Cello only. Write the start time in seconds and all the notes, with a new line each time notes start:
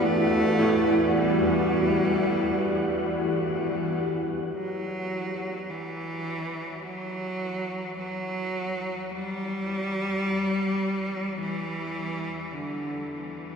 0.02 A3
1.17 G3
4.55 F#3
5.69 E3
6.83 F#3
7.98 F#3
9.10 G3
11.38 E3
12.53 D3